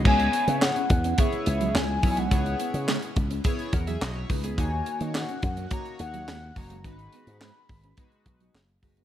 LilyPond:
<<
  \new Staff \with { instrumentName = "Soft synth lead" } { \time 4/4 \key cis \dorian \tempo 4 = 106 gis''4 fis''4 e''4 gis''8~ gis''32 gis''32 fis''16~ | fis''4.~ fis''16 r2 r16 | gis''4 fis''4 ais''8 fis''4 ais''8 | b''2. r4 | }
  \new Staff \with { instrumentName = "Analog polysynth" } { \time 4/4 \key cis \dorian << { r1 | r2 r8 <ais' fis''>16 <gis' e''>16 <fis' dis''>16 <e' cis''>16 <dis' b'>16 <b gis'>16~ | <b gis'>16 r2. r8. | r1 | } \\ { <b e' gis' cis''>4. r8 <b e' gis' cis''>4 r8 <b e' gis' cis''>8 | <b e' gis' cis''>4. r8 <b e' gis' cis''>8 r4. | <ais dis' fis' cis''>4. r8 <ais dis' fis' cis''>4 r8 <ais dis' fis' cis''>8 | <gis dis' fis' b'>4. r8 <gis dis' fis' b'>4 r8 <gis dis' fis' b'>8 | } >> }
  \new Staff \with { instrumentName = "Clean electric guitar" } { \time 4/4 \key cis \dorian cis'16 r8 b16 r16 cis'16 r16 cis'16 b16 r8 fis16 gis16 r8 gis16 | cis'16 r16 b16 r16 gis16 r8 cis'16 b16 r8 fis16 r8 gis16 b16 | dis'16 r8 ais16 r16 cis'16 r16 cis'16 ais16 r8 fis16 gis16 r8 gis16 | cis'16 r16 b16 r16 gis16 r8 cis'16 b16 r8 fis16 r8 gis16 b16 | }
  \new Staff \with { instrumentName = "String machine" } { \time 4/4 \key cis \dorian << { <cis e'>1~ | <cis e'>1 | <dis fis'>1~ | <dis fis'>1 | } \\ { <gis b>1~ | <gis b>1 | <ais cis'>1 | <gis b>1 | } >> }
  \new Staff \with { instrumentName = "Slap bass" } { \clef bass \time 4/4 \key cis \dorian cis,8 r16 cis8 r16 e,8 r8 cis,8 cis,8 b,,8 | cis,8 r16 cis8 r16 cis,8 r8 e,8 b,,8 cis,8 | dis,8 r16 dis8 r16 fis,8 r8 dis,8 dis,8 fis,,8 | gis,,8 r16 gis,8 r16 gis,,8 r8 b,,8 fis,,8 fis,,8 | }
  \new DrumStaff \with { instrumentName = "Drums" } \drummode { \time 4/4 <cymc bd>16 hh16 hh16 hh16 <hc sn>16 hh16 <hh bd>16 hh16 <hh bd>16 hh16 hh16 hh16 <hc sn>8 <hho bd>16 hh16 | <hh bd>16 hh16 hh16 hh16 <hc sn>16 hh16 <hh bd>16 hh16 <hh bd>16 hh16 <hh bd>16 hh16 <hc sn>8 <hho bd>16 hh16 | <hh bd>8 hh16 hh16 <hc sn>16 hh16 <hh bd>16 hh16 <hh bd>16 hh16 hh16 hh16 <hc sn>8 <hho bd>16 hh16 | <hh bd>16 hh16 hh16 hh16 <hc sn>8 <hho bd>16 hh16 <hh bd>16 hh16 <hh bd>16 hh16 <hc sn>16 hh16 <hho bd>16 hh16 | }
>>